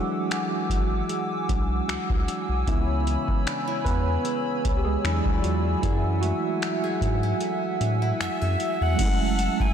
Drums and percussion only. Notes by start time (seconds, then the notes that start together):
0.31 finger snap, closed hi-hat
0.70 kick, closed hi-hat
1.09 closed hi-hat
1.49 kick, closed hi-hat
1.89 finger snap, closed hi-hat
2.10 kick
2.28 closed hi-hat
2.67 kick, closed hi-hat
3.07 closed hi-hat
3.28 kick
3.47 finger snap, closed hi-hat
3.85 kick, closed hi-hat
4.25 closed hi-hat
4.65 kick, closed hi-hat
5.05 finger snap, closed hi-hat
5.26 kick
5.44 closed hi-hat
5.83 kick, closed hi-hat
6.23 closed hi-hat
6.62 finger snap, closed hi-hat
7.01 kick, closed hi-hat
7.41 closed hi-hat
7.81 closed hi-hat
8.21 finger snap, closed hi-hat
8.60 closed hi-hat
8.99 kick, closed hi-hat, crash
9.39 closed hi-hat
9.60 kick